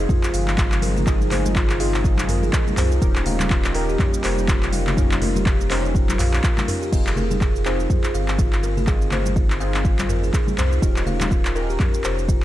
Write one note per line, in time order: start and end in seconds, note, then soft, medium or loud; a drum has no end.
0.00 2.98 C3 medium
0.00 2.98 F3 medium
0.00 2.98 G#3 medium
0.00 1.04 C4 medium
0.00 1.04 D#4 medium
0.00 6.88 D#4 medium
0.00 1.04 F4 medium
0.00 2.98 F4 medium
0.00 1.04 G#4 medium
0.09 0.17 F4 medium
0.09 kick loud
0.09 mid tom medium
0.09 muted conga medium
0.09 high conga loud
0.09 shaker medium
0.23 clap medium
0.23 shaker medium
0.33 2.50 G1 medium
0.33 0.46 F5 medium
0.33 open hi-hat medium
0.33 shaker medium
0.47 clap medium
0.47 muted conga soft
0.47 shaker medium
0.58 0.66 F4 medium
0.58 kick loud
0.58 clap loud
0.58 shaker medium
0.72 clap medium
0.72 shaker medium
0.82 0.95 A#4 medium
0.82 open hi-hat medium
0.82 muted conga medium
0.82 high conga medium
0.82 shaker medium
0.96 1.06 G#4 medium
0.96 low conga medium
0.96 shaker medium
1.07 1.77 C4 medium
1.07 1.77 D#4 medium
1.07 1.77 F4 medium
1.07 1.20 G#4 medium
1.07 1.77 G#4 medium
1.07 kick loud
1.07 clap medium
1.07 shaker medium
1.21 muted conga medium
1.21 high conga medium
1.21 shaker medium
1.31 1.39 C5 medium
1.31 clap medium
1.31 open hi-hat medium
1.31 low conga loud
1.31 shaker medium
1.45 high conga loud
1.45 low conga medium
1.45 shaker medium
1.55 1.63 F4 medium
1.55 kick loud
1.55 clap loud
1.55 shaker medium
1.69 clap medium
1.69 muted conga soft
1.69 shaker medium
1.80 2.99 C4 medium
1.80 2.99 D#4 medium
1.80 2.99 F4 medium
1.80 2.99 G#4 medium
1.80 1.93 F5 medium
1.80 open hi-hat loud
1.80 shaker medium
1.94 clap medium
1.94 shaker soft
2.04 2.12 F4 medium
2.04 kick loud
2.04 muted conga medium
2.04 shaker medium
2.17 clap medium
2.17 high conga loud
2.17 shaker medium
2.29 2.42 A#4 medium
2.29 mid tom medium
2.29 open hi-hat medium
2.29 shaker medium
2.42 2.52 G#4 medium
2.42 muted conga soft
2.42 high conga medium
2.42 shaker soft
2.53 2.67 G#4 medium
2.53 kick loud
2.53 clap loud
2.53 shaker medium
2.67 high conga loud
2.67 low conga medium
2.67 shaker medium
2.77 2.98 C2 loud
2.77 2.85 C5 medium
2.77 clap medium
2.77 mid tom medium
2.77 open hi-hat medium
2.77 muted conga medium
2.77 high conga medium
2.77 shaker medium
2.92 shaker medium
3.02 3.96 D#1 loud
3.02 6.88 C#3 medium
3.02 6.88 G3 medium
3.02 6.88 A#3 medium
3.02 3.73 C#4 medium
3.02 3.73 D#4 medium
3.02 3.10 F4 medium
3.02 3.73 G4 medium
3.02 4.95 G4 medium
3.02 3.73 A#4 medium
3.02 kick loud
3.02 shaker medium
3.16 clap medium
3.16 muted conga medium
3.16 high conga medium
3.16 shaker medium
3.26 3.39 F5 medium
3.26 open hi-hat medium
3.26 low conga medium
3.26 shaker soft
3.40 clap loud
3.40 high conga medium
3.40 low conga medium
3.40 shaker medium
3.50 3.58 F4 medium
3.50 kick loud
3.50 clap loud
3.50 shaker soft
3.64 clap loud
3.64 muted conga soft
3.64 shaker medium
3.75 4.95 C#4 medium
3.75 4.94 D#4 medium
3.75 4.94 G4 medium
3.75 4.94 A#4 medium
3.75 3.88 A#4 medium
3.75 open hi-hat loud
3.75 shaker medium
3.89 3.99 G4 medium
3.89 shaker medium
3.99 kick loud
3.99 clap medium
3.99 mid tom medium
3.99 muted conga soft
3.99 high conga medium
3.99 shaker medium
4.14 shaker medium
4.24 6.19 F1 medium
4.24 4.31 C5 medium
4.24 clap medium
4.24 open hi-hat medium
4.24 shaker medium
4.38 muted conga soft
4.38 shaker medium
4.48 4.56 F4 medium
4.48 kick loud
4.48 clap loud
4.48 shaker medium
4.63 clap medium
4.63 shaker medium
4.72 4.85 F5 medium
4.72 open hi-hat medium
4.72 muted conga medium
4.72 high conga medium
4.72 shaker medium
4.87 clap medium
4.87 low conga medium
4.87 shaker soft
4.97 5.68 C#4 medium
4.97 5.68 D#4 medium
4.97 6.90 F4 medium
4.97 5.05 F4 medium
4.97 5.68 G4 medium
4.97 5.68 A#4 medium
4.97 kick loud
4.97 mid tom medium
4.97 shaker medium
5.11 clap loud
5.11 muted conga medium
5.11 high conga medium
5.11 shaker medium
5.22 5.34 A#4 medium
5.22 open hi-hat medium
5.22 low conga loud
5.22 shaker medium
5.35 5.45 G4 medium
5.35 high conga loud
5.35 low conga medium
5.35 shaker medium
5.46 5.59 G4 medium
5.46 kick loud
5.46 clap loud
5.46 shaker medium
5.60 muted conga soft
5.60 shaker medium
5.70 6.90 C#4 medium
5.70 6.90 D#4 medium
5.70 6.90 G4 medium
5.70 6.90 A#4 medium
5.70 5.78 C5 medium
5.70 clap loud
5.70 open hi-hat loud
5.70 shaker medium
5.85 shaker soft
5.95 6.02 F4 medium
5.95 kick loud
5.95 muted conga soft
5.95 shaker medium
6.09 clap medium
6.09 high conga loud
6.09 shaker medium
6.19 6.40 A#1 loud
6.19 6.32 F5 medium
6.19 clap medium
6.19 mid tom medium
6.19 open hi-hat loud
6.19 shaker loud
6.33 clap medium
6.33 muted conga soft
6.33 high conga medium
6.33 shaker medium
6.44 6.51 F4 medium
6.44 kick loud
6.44 clap loud
6.44 shaker medium
6.57 clap medium
6.57 high conga medium
6.57 low conga medium
6.57 shaker medium
6.68 6.81 A#4 medium
6.68 mid tom medium
6.68 open hi-hat medium
6.68 muted conga medium
6.68 high conga medium
6.68 shaker medium
6.82 6.92 G4 medium
6.82 shaker medium
6.92 7.87 F1 loud
6.92 7.63 C4 medium
6.92 7.63 D#4 medium
6.92 7.63 F4 medium
6.92 7.00 F4 medium
6.92 7.63 G#4 medium
6.92 kick loud
6.92 crash medium
6.92 muted conga soft
6.92 shaker medium
7.07 clap loud
7.07 high conga medium
7.07 shaker medium
7.16 7.29 A#4 medium
7.16 muted conga soft
7.16 low conga loud
7.16 shaker soft
7.31 7.40 G#4 medium
7.31 high conga loud
7.31 low conga medium
7.31 shaker loud
7.41 7.54 G#4 medium
7.41 kick loud
7.41 clap medium
7.41 shaker medium
7.56 shaker medium
7.65 8.85 C4 medium
7.65 8.85 D#4 medium
7.65 8.85 F4 medium
7.65 8.85 G#4 medium
7.65 7.73 C5 medium
7.65 clap loud
7.65 shaker medium
7.80 muted conga soft
7.80 shaker medium
7.90 7.97 F4 medium
7.90 kick loud
7.90 mid tom medium
7.90 high conga medium
7.90 shaker medium
8.04 clap medium
8.04 muted conga medium
8.04 shaker medium
8.14 10.31 G1 medium
8.14 8.27 F5 medium
8.14 shaker medium
8.28 clap medium
8.28 muted conga soft
8.28 shaker medium
8.39 8.46 F4 medium
8.39 kick loud
8.39 shaker medium
8.53 clap medium
8.53 shaker medium
8.63 8.76 A#4 medium
8.63 muted conga medium
8.63 shaker medium
8.77 8.87 G#4 medium
8.77 low conga medium
8.77 shaker soft
8.87 9.58 C4 medium
8.87 9.58 D#4 medium
8.87 9.58 F4 medium
8.87 9.58 G#4 medium
8.87 9.01 G#4 medium
8.87 kick loud
8.87 clap medium
8.87 shaker medium
9.02 shaker medium
9.11 9.19 C5 medium
9.11 clap medium
9.11 muted conga soft
9.11 low conga loud
9.11 shaker soft
9.26 high conga loud
9.26 low conga medium
9.26 shaker loud
9.36 9.44 F4 medium
9.36 kick loud
9.36 shaker medium
9.50 clap medium
9.50 shaker medium
9.60 10.80 C4 medium
9.60 10.80 D#4 medium
9.60 10.80 F4 medium
9.60 10.80 G#4 medium
9.60 9.73 F5 medium
9.60 shaker medium
9.74 clap loud
9.74 muted conga soft
9.74 shaker medium
9.85 9.92 F4 medium
9.85 kick loud
9.85 shaker medium
9.99 clap loud
9.99 muted conga medium
9.99 high conga loud
9.99 shaker medium
10.09 10.22 A#4 medium
10.09 mid tom medium
10.09 shaker medium
10.22 10.33 G#4 medium
10.22 muted conga soft
10.22 high conga medium
10.22 shaker medium
10.33 10.47 G#4 medium
10.33 kick loud
10.33 clap medium
10.33 shaker loud
10.47 high conga loud
10.47 low conga loud
10.47 shaker medium
10.58 10.79 C2 medium
10.58 10.66 C5 medium
10.58 clap loud
10.58 mid tom medium
10.58 muted conga medium
10.58 shaker medium
10.72 shaker medium
10.82 11.77 D#1 loud
10.82 11.53 C#4 medium
10.82 11.53 D#4 medium
10.82 10.90 F4 medium
10.82 11.53 G4 medium
10.82 11.53 A#4 medium
10.82 kick loud
10.82 shaker loud
10.96 clap medium
10.96 high conga medium
10.96 shaker medium
11.06 11.19 F5 medium
11.06 muted conga soft
11.06 low conga loud
11.06 shaker medium
11.21 clap loud
11.21 high conga loud
11.21 low conga medium
11.21 shaker loud
11.30 11.39 F4 medium
11.30 kick loud
11.30 muted conga soft
11.30 shaker medium
11.45 clap loud
11.45 shaker medium
11.55 12.44 C#4 medium
11.55 12.44 D#4 medium
11.55 12.44 G4 medium
11.55 12.44 A#4 medium
11.55 11.68 A#4 medium
11.55 shaker medium
11.69 11.79 G4 medium
11.69 muted conga soft
11.69 shaker medium
11.80 kick loud
11.80 clap medium
11.80 mid tom medium
11.80 high conga medium
11.80 shaker medium
11.94 muted conga soft
11.94 shaker medium
12.04 12.44 F1 medium
12.04 12.12 C5 medium
12.04 clap medium
12.04 shaker loud
12.19 muted conga soft
12.19 shaker medium
12.28 12.36 F4 medium
12.28 kick loud
12.28 shaker medium